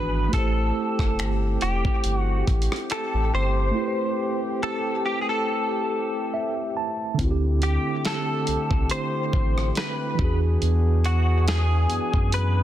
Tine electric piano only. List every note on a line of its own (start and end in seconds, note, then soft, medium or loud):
0.00 0.32 E3 medium
0.00 0.33 D4 soft
0.00 0.34 F#4 soft
0.00 0.35 B4 medium
0.29 3.70 A3 medium
0.29 3.71 E4 medium
0.35 3.73 G4 medium
0.35 3.75 C5 medium
3.71 7.13 A3 medium
3.71 7.14 E4 medium
3.78 7.16 G4 medium
3.78 3.86 B4 medium
3.88 7.21 C5 medium
6.34 6.73 E5 medium
6.77 7.16 A5 medium
7.14 10.13 D3 medium
7.14 10.14 C4 medium
7.21 10.16 E4 medium
7.21 7.29 F#4 medium
7.31 10.21 G4 medium
10.15 12.63 E3 medium
10.15 12.63 D4 medium
10.21 12.63 F#4 medium
10.21 12.63 G#4 medium